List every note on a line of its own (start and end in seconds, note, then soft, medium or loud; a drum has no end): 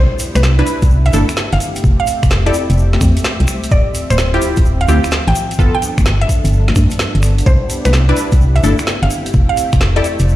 0.00 1.57 B3 medium
0.00 1.57 D4 medium
0.00 1.59 E4 medium
0.00 5.55 G4 medium
0.00 0.18 C5 loud
0.19 open hi-hat loud
0.19 shaker loud
0.35 0.63 C2 medium
0.35 0.56 B4 loud
0.35 finger snap medium
0.35 closed hi-hat medium
0.35 high conga medium
0.35 shaker soft
0.43 snare loud
0.43 shaker soft
0.59 1.12 D4 medium
0.59 1.12 E4 medium
0.59 1.12 B4 loud
0.59 closed hi-hat soft
0.67 open hi-hat loud
0.67 shaker medium
0.82 1.10 C2 loud
0.82 kick loud
0.82 closed hi-hat medium
0.82 shaker medium
0.90 shaker soft
1.06 1.32 E5 loud
1.06 closed hi-hat soft
1.13 1.24 G1 medium
1.13 1.25 D4 medium
1.13 1.25 E4 medium
1.13 1.25 A4 loud
1.13 open hi-hat loud
1.13 high conga medium
1.13 shaker medium
1.29 finger snap medium
1.29 closed hi-hat medium
1.29 shaker medium
1.36 snare loud
1.36 shaker soft
1.53 1.58 G1 loud
1.53 1.79 F5 loud
1.53 closed hi-hat medium
1.60 3.69 A3 medium
1.60 3.69 C4 medium
1.60 5.55 E5 medium
1.60 open hi-hat medium
1.60 shaker medium
1.76 closed hi-hat medium
1.76 shaker medium
1.84 1.95 F1 loud
1.84 kick loud
1.84 shaker soft
2.00 2.26 F5 loud
2.07 open hi-hat loud
2.07 shaker loud
2.23 2.50 F1 medium
2.23 finger snap medium
2.23 kick loud
2.23 closed hi-hat medium
2.23 shaker soft
2.31 snare loud
2.31 shaker soft
2.46 2.57 E4 medium
2.46 2.57 G4 medium
2.46 2.57 A4 medium
2.46 2.66 D5 loud
2.46 closed hi-hat soft
2.54 open hi-hat loud
2.54 shaker medium
2.70 2.97 F1 loud
2.70 closed hi-hat medium
2.70 shaker medium
2.78 shaker soft
2.93 snare medium
2.93 closed hi-hat soft
2.93 high conga medium
3.01 3.12 F2 medium
3.01 finger snap medium
3.01 kick loud
3.01 open hi-hat loud
3.01 high conga medium
3.01 shaker medium
3.17 closed hi-hat medium
3.17 shaker medium
3.24 snare loud
3.24 shaker soft
3.40 3.46 C2 medium
3.40 closed hi-hat medium
3.48 finger snap medium
3.48 open hi-hat medium
3.48 shaker loud
3.64 closed hi-hat medium
3.64 shaker soft
3.71 3.82 D1 medium
3.71 7.43 F3 medium
3.71 5.57 C4 medium
3.71 3.93 D5 medium
3.71 kick loud
3.71 shaker soft
3.95 open hi-hat loud
3.95 shaker loud
4.10 4.38 D1 medium
4.10 4.30 C5 loud
4.10 finger snap medium
4.10 closed hi-hat medium
4.10 high conga medium
4.10 shaker medium
4.18 snare loud
4.18 shaker soft
4.34 4.87 C4 medium
4.34 4.87 E4 medium
4.34 4.87 F4 medium
4.34 4.87 G4 medium
4.34 closed hi-hat soft
4.42 open hi-hat medium
4.42 shaker loud
4.57 4.85 D1 loud
4.57 kick loud
4.57 closed hi-hat medium
4.57 shaker medium
4.65 shaker soft
4.81 5.07 F5 loud
4.81 closed hi-hat soft
4.88 4.99 D2 medium
4.88 5.00 C4 medium
4.88 5.00 E4 medium
4.88 5.00 F4 medium
4.88 5.00 G4 loud
4.88 open hi-hat loud
4.88 high conga medium
4.88 shaker medium
5.04 finger snap medium
5.04 closed hi-hat medium
5.04 shaker medium
5.11 snare loud
5.11 shaker soft
5.27 5.33 A1 medium
5.27 5.54 G5 loud
5.27 closed hi-hat medium
5.35 open hi-hat medium
5.35 shaker loud
5.51 closed hi-hat medium
5.51 shaker medium
5.59 5.70 G1 medium
5.59 5.76 B3 medium
5.59 9.07 B3 medium
5.59 9.07 D4 medium
5.59 5.76 F4 medium
5.59 5.76 A4 loud
5.59 7.44 A4 medium
5.59 kick loud
5.59 shaker soft
5.75 6.01 G5 loud
5.82 open hi-hat loud
5.82 shaker loud
5.98 6.25 G1 medium
5.98 finger snap medium
5.98 kick loud
5.98 closed hi-hat medium
5.98 high conga medium
5.98 shaker medium
6.06 snare loud
6.06 shaker soft
6.21 6.41 E5 loud
6.21 closed hi-hat soft
6.29 kick medium
6.29 open hi-hat medium
6.29 shaker loud
6.45 6.72 G1 loud
6.45 closed hi-hat medium
6.45 shaker medium
6.52 shaker soft
6.68 snare medium
6.68 closed hi-hat soft
6.68 high conga medium
6.76 6.87 G2 medium
6.76 finger snap medium
6.76 kick loud
6.76 open hi-hat loud
6.76 high conga medium
6.76 shaker loud
6.90 closed hi-hat medium
6.90 shaker medium
6.99 snare loud
6.99 shaker soft
7.15 7.43 G1 medium
7.15 closed hi-hat medium
7.23 finger snap medium
7.23 open hi-hat medium
7.23 shaker medium
7.38 closed hi-hat medium
7.38 shaker soft
7.46 7.57 C2 loud
7.46 10.36 E4 medium
7.46 10.36 G4 medium
7.46 7.68 C5 loud
7.46 kick loud
7.46 shaker soft
7.70 open hi-hat loud
7.70 shaker medium
7.85 8.13 C2 medium
7.85 8.05 B4 loud
7.85 finger snap medium
7.85 closed hi-hat medium
7.85 high conga medium
7.85 shaker soft
7.93 snare loud
7.93 shaker soft
8.09 8.62 D4 medium
8.09 8.62 E4 medium
8.09 8.62 B4 medium
8.09 closed hi-hat soft
8.16 open hi-hat medium
8.16 shaker medium
8.32 8.60 C2 loud
8.32 kick loud
8.32 closed hi-hat medium
8.32 shaker medium
8.40 shaker soft
8.56 8.82 E5 medium
8.56 closed hi-hat soft
8.63 8.74 G1 medium
8.63 8.75 D4 medium
8.63 8.75 E4 medium
8.63 8.75 A4 loud
8.63 open hi-hat loud
8.63 high conga medium
8.63 shaker medium
8.79 finger snap medium
8.79 closed hi-hat medium
8.79 shaker medium
8.87 snare loud
8.87 shaker soft
9.02 9.08 G1 medium
9.02 9.29 F5 medium
9.02 closed hi-hat medium
9.10 10.36 A3 medium
9.10 10.36 C4 medium
9.10 open hi-hat medium
9.10 shaker loud
9.26 closed hi-hat medium
9.26 shaker soft
9.33 9.45 F1 loud
9.33 kick loud
9.33 shaker soft
9.49 9.76 F5 loud
9.57 open hi-hat loud
9.57 shaker medium
9.72 10.00 F1 medium
9.72 finger snap medium
9.72 kick loud
9.72 closed hi-hat medium
9.72 shaker soft
9.81 snare loud
9.81 shaker soft
9.96 10.07 E4 medium
9.96 10.07 G4 medium
9.96 10.07 A4 medium
9.96 10.16 D5 loud
9.96 closed hi-hat soft
10.04 open hi-hat medium
10.04 shaker medium
10.19 10.36 F1 loud
10.19 closed hi-hat medium
10.19 shaker soft
10.29 shaker soft